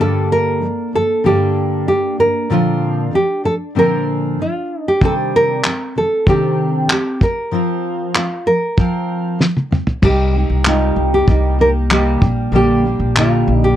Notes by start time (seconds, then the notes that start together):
Already playing: G2
0.00 D3 G3 A#3 D4 A4
0.32 A#4
0.61 G2 D3 G3
0.93 G2 D3 G3 A4
1.24 G2 D3 G3 A#3 D4 G4 A4
1.87 G2 D3 G3 G4
2.18 G2 D3 G3 A#4
2.50 A#2 D3 F3 C4 D4 F4 A#4
3.11 A#2 D3 F3 G4
3.44 A#2 D3 F3 A4
3.75 A#2 D3 F3 C4 D4 A#4
4.39 A#2 D3 F3 F4
4.88 G4
5.01 C3 D#3 G3 C4 D4 G4, kick
5.05 A4
5.36 A#4
5.64 C3 D#3 G3, clap
5.95 C3 D#3 G3 A4
6.26 C3 D#3 G3 C4 D4 G4, kick
6.89 C3 D#3 G3 G4, clap
7.20 F3 C4 A#4, kick
7.51 F3 C4 F4 A#4
8.14 F3 C4 F4, clap
8.46 F3 C4 A#4
8.77 F3 C4 F4 A#4, kick
9.39 F3 C4, snare
9.57 high tom
9.71 F3 C4, mid tom
9.87 floor tom
10.02 C2 C3 G3 A#3 D#4 G4, kick, crash
10.34 A#3 D#4 G4
10.50 C2
10.64 C3 G3 A#3 D#4 F4 G4, clap
10.96 C2
11.14 G4
11.27 C2 G3 A#3 D#4 G4, kick
11.59 A#3 D#4 G4 A#4
11.90 C3 G3 A#3 D#4 G4, clap
12.22 A#1 G3 A#3 D4 G4, kick
12.52 A#1 A#2 D3 G3 A#3 D4 G4
12.85 G3 A#3 D4 G4
13.00 A#1
13.16 A#2 D3 G3 A#3 D4 F4 G4, clap
13.48 A#1
13.64 G4